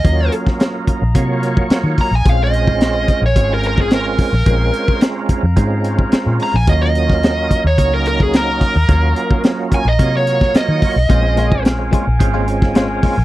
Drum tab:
HH |x-x-x-x-x-x-x-o-|x-x-x-x-x-x-x-o-|x-x-x-x-x-x-x-o-|x-x-x-x-x-x-x-o-|
SD |---oo-------o---|----o-------o---|----o-------o---|---oo-------oo--|
BD |o--o--o-o--o--o-|o--o--o-o--o--o-|o--o--o-o--o----|o--o--o-o--o--o-|

HH |x-x-x-x-x-x-x-o-|x-x-x-x-x-x-x-o-|
SD |----o------oo---|----o------oo---|
BD |o--o--o-o--o--o-|o--o--o-o--o--o-|